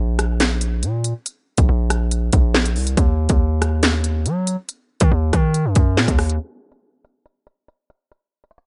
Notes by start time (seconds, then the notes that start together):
Already playing: A#1
0.19 cross-stick, closed hi-hat
0.40 snare, clap, closed hi-hat
0.61 closed hi-hat
0.83 A#2, closed hi-hat
1.04 closed hi-hat
1.26 closed hi-hat
1.58 A#1, kick, closed hi-hat
1.69 A#1
1.90 cross-stick, closed hi-hat
2.11 closed hi-hat
2.33 A#1, kick, closed hi-hat
2.54 snare, clap
2.66 closed hi-hat
2.76 C2, open hi-hat
2.87 closed hi-hat
2.97 D#2, kick, closed hi-hat
3.29 D#2, kick, closed hi-hat
3.62 cross-stick, closed hi-hat
3.83 snare, clap, closed hi-hat
4.04 closed hi-hat
4.26 F#3, closed hi-hat
4.47 closed hi-hat
4.69 closed hi-hat
5.00 D#3, kick, closed hi-hat
5.12 D#2
5.33 D#3, kick, cross-stick, closed hi-hat
5.54 closed hi-hat
5.65 F#2
5.75 F#2, kick, closed hi-hat
5.97 A#2, snare, clap
6.08 D#2, kick, closed hi-hat
6.19 cross-stick, open hi-hat
6.30 closed hi-hat
6.40 closed hi-hat
6.72 closed hi-hat
7.05 closed hi-hat
7.26 closed hi-hat
7.47 closed hi-hat
7.68 closed hi-hat
7.90 closed hi-hat
8.12 closed hi-hat
8.44 closed hi-hat
8.51 closed hi-hat
8.58 closed hi-hat